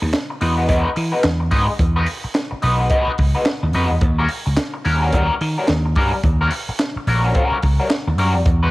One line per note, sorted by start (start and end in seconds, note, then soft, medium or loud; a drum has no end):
0.02 0.12 D#2 loud
0.02 muted clean electric guitar stroke soft
0.13 muted clean electric guitar stroke soft
0.13 snare loud
0.13 clap medium
0.13 closed hi-hat medium
0.30 muted clean electric guitar stroke soft
0.41 0.66 E2 medium
0.41 0.57 G#3 medium
0.41 0.57 D#4 medium
0.41 0.56 F#4 medium
0.41 0.56 B4 medium
0.41 open hi-hat medium
0.57 0.67 G#3 medium
0.57 0.68 D#4 medium
0.57 0.68 F#4 medium
0.57 0.68 B4 medium
0.68 0.84 E2 medium
0.68 0.89 G#3 medium
0.68 0.89 D#4 medium
0.68 0.89 F#4 medium
0.68 0.89 B4 medium
0.68 kick medium
0.68 closed hi-hat medium
0.96 1.12 E3 medium
0.96 muted clean electric guitar stroke soft
0.96 open hi-hat medium
1.12 1.22 G#3 soft
1.12 1.23 D#4 medium
1.12 1.23 F#4 medium
1.12 1.23 B4 medium
1.23 1.49 E2 medium
1.23 muted clean electric guitar stroke soft
1.23 snare loud
1.23 clap medium
1.23 closed hi-hat medium
1.40 muted clean electric guitar stroke soft
1.51 1.67 G#2 medium
1.51 1.72 G#3 medium
1.51 1.67 D#4 loud
1.51 1.67 F#4 medium
1.51 1.67 B4 medium
1.51 kick medium
1.51 open hi-hat medium
1.68 muted clean electric guitar stroke soft
1.79 2.04 E2 loud
1.79 muted clean electric guitar stroke soft
1.79 kick loud
1.79 closed hi-hat medium
1.96 2.06 G#3 medium
1.96 2.06 D#4 medium
1.96 2.07 F#4 medium
1.96 2.07 B4 medium
2.06 muted clean electric guitar stroke soft
2.06 open hi-hat loud
2.24 muted clean electric guitar stroke soft
2.24 muted slap bass stroke medium
2.34 muted clean electric guitar stroke soft
2.34 snare loud
2.34 clap medium
2.34 closed hi-hat medium
2.51 muted clean electric guitar stroke medium
2.51 muted slap bass stroke soft
2.62 2.88 B1 medium
2.62 2.79 G#3 medium
2.62 2.79 D#4 medium
2.62 2.78 F#4 medium
2.62 2.78 B4 medium
2.62 open hi-hat medium
2.79 2.89 G#3 soft
2.79 2.90 D#4 medium
2.79 2.90 F#4 medium
2.79 2.90 B4 medium
2.90 3.11 G#3 medium
2.90 3.11 D#4 medium
2.90 3.11 F#4 loud
2.90 3.11 B4 loud
2.90 kick medium
2.90 closed hi-hat medium
3.07 muted slap bass stroke soft
3.18 3.34 C#2 medium
3.18 muted clean electric guitar stroke soft
3.18 kick medium
3.18 open hi-hat medium
3.35 3.45 G#3 soft
3.35 3.45 D#4 medium
3.35 3.45 F#4 medium
3.35 3.46 B4 medium
3.45 muted clean electric guitar stroke soft
3.45 snare loud
3.45 clap medium
3.45 closed hi-hat medium
3.63 3.73 D#2 medium
3.63 muted clean electric guitar stroke soft
3.73 3.89 F2 medium
3.73 3.94 G#3 medium
3.73 3.91 D#4 medium
3.73 3.90 F#4 loud
3.73 3.90 B4 medium
3.73 open hi-hat medium
3.91 4.01 E2 medium
3.91 muted clean electric guitar stroke medium
4.01 4.26 D#2 loud
4.01 muted clean electric guitar stroke soft
4.01 kick loud
4.01 closed hi-hat medium
4.18 4.28 G3 medium
4.18 4.28 C#4 medium
4.18 4.28 F#4 medium
4.18 4.28 A#4 medium
4.29 muted clean electric guitar stroke soft
4.29 open hi-hat medium
4.46 4.56 C#2 medium
4.46 muted clean electric guitar stroke soft
4.56 muted clean electric guitar stroke soft
4.56 snare loud
4.56 clap medium
4.56 closed hi-hat medium
4.74 muted clean electric guitar stroke medium
4.85 5.10 D#2 medium
4.85 5.01 G3 medium
4.85 5.01 C#4 medium
4.85 5.01 F#4 medium
4.85 5.01 A#4 medium
4.85 open hi-hat medium
5.02 5.12 G3 medium
5.02 5.13 C#4 medium
5.02 5.13 F#4 medium
5.02 5.13 A#4 medium
5.12 5.28 D#2 medium
5.12 5.33 G3 medium
5.12 5.33 C#4 medium
5.12 5.34 F#4 medium
5.12 5.34 A#4 loud
5.12 kick medium
5.12 closed hi-hat medium
5.41 5.56 D#3 medium
5.41 muted clean electric guitar stroke soft
5.41 open hi-hat medium
5.58 5.68 G3 medium
5.58 5.68 C#4 medium
5.58 5.68 F#4 medium
5.58 5.69 A#4 medium
5.67 5.93 D#2 loud
5.67 muted clean electric guitar stroke soft
5.67 snare loud
5.67 clap medium
5.67 closed hi-hat medium
5.86 muted clean electric guitar stroke soft
5.96 6.11 G2 medium
5.96 6.16 G3 medium
5.96 6.13 C#4 medium
5.96 6.13 F#4 medium
5.96 6.13 A#4 medium
5.96 kick medium
5.96 open hi-hat medium
6.14 muted clean electric guitar stroke medium
6.24 6.49 D#2 loud
6.24 muted clean electric guitar stroke soft
6.24 kick loud
6.24 closed hi-hat medium
6.41 6.51 G3 medium
6.41 6.52 C#4 medium
6.41 6.52 F#4 medium
6.41 6.52 A#4 medium
6.51 muted clean electric guitar stroke soft
6.51 open hi-hat loud
6.69 muted slap bass stroke medium
6.69 muted clean electric guitar stroke soft
6.79 muted clean electric guitar stroke soft
6.79 snare loud
6.79 clap medium
6.79 closed hi-hat medium
6.96 muted slap bass stroke soft
6.96 muted clean electric guitar stroke soft
7.07 7.32 A#1 medium
7.07 7.23 G3 medium
7.07 7.23 C#4 medium
7.07 7.23 F#4 medium
7.07 7.22 A#4 medium
7.07 open hi-hat medium
7.24 7.34 G3 soft
7.24 7.34 C#4 medium
7.24 7.34 F#4 medium
7.24 7.35 A#4 medium
7.35 7.57 G3 medium
7.35 7.57 C#4 medium
7.35 7.57 F#4 medium
7.35 7.57 A#4 medium
7.35 kick medium
7.35 closed hi-hat medium
7.52 muted slap bass stroke soft
7.63 7.78 C#2 medium
7.63 muted clean electric guitar stroke soft
7.63 kick loud
7.63 open hi-hat medium
7.80 7.90 G3 soft
7.80 7.90 C#4 medium
7.80 7.90 F#4 medium
7.80 7.90 A#4 medium
7.90 muted clean electric guitar stroke soft
7.90 snare loud
7.90 clap medium
7.90 closed hi-hat medium
8.07 8.17 D#2 medium
8.07 muted clean electric guitar stroke medium
8.18 8.35 F#2 medium
8.18 8.38 G3 medium
8.18 8.35 C#4 medium
8.18 8.35 F#4 medium
8.18 8.34 A#4 medium
8.18 open hi-hat medium
8.35 8.45 F2 medium
8.35 muted clean electric guitar stroke soft
8.46 8.71 E2 loud
8.46 muted clean electric guitar stroke soft
8.46 kick loud
8.46 closed hi-hat medium
8.63 8.71 G#3 medium
8.63 8.71 D#4 medium
8.63 8.71 F#4 medium
8.63 8.71 B4 medium